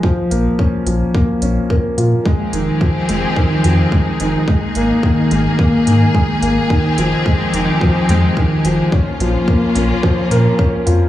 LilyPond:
<<
  \new Staff \with { instrumentName = "String section" } { \time 4/4 \key f \minor \tempo 4 = 108 << { r1 | aes'1 | aes'1~ | aes'1 |
f'1 | } \\ { r1 | <f c' ees' g'>1 | bes1 | <f c' ees' g'>1 |
<bes des'>1 | } >> }
  \new Staff \with { instrumentName = "Grand piano" } { \clef bass \time 4/4 \key f \minor f8 bes8 des'8 f8 bes8 des'8 bes'8 f'8 | aes8 ees8 f8 aes8 ees8 f8 aes8 ees8 | aes8 bes8 ees8 aes8 bes8 ees8 aes8 bes8 | ees8 f8 aes8 ees8 f8 aes8 ees8 f8 |
des'8 f8 bes8 des'8 f8 bes'8 des'8 f'8 | }
  \new Staff \with { instrumentName = "Sub bass" } { \clef bass \time 4/4 \key f \minor r8 bes,,8 r8 bes,,8 r8 bes,,8 r8 bes,8 | r8 f,,8 r8 f,,8 r8 f,8 r8 f,,8 | r8 aes,,8 r8 aes,,8 r8 aes,8 r8 aes,,8 | r8 f,,8 r8 f,,8 r8 f,8 r8 f,,8 |
r8 bes,,8 r8 bes,,8 r8 bes,8 r8 f,8 | }
  \new DrumStaff \with { instrumentName = "Drums" } \drummode { \time 4/4 bd8 hh8 bd8 hh8 bd8 hh8 bd8 hh8 | bd8 hh8 bd8 hh8 bd8 hh8 bd8 hh8 | bd8 hh8 bd8 hh8 bd8 hh8 bd8 hh8 | bd8 hh8 bd8 hh8 bd8 hh8 bd8 hh8 |
bd8 hh8 bd8 hh8 bd8 hh8 bd8 hh8 | }
>>